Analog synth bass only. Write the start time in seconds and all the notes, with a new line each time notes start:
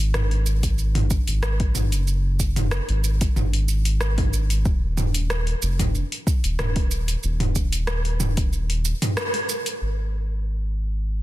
Already playing: G#1
1.28 G#1
1.92 F#1
2.89 G#1
3.36 G#1
4.65 D#1
5.63 F1
6.44 D#1
7.24 D#1
9.81 G#1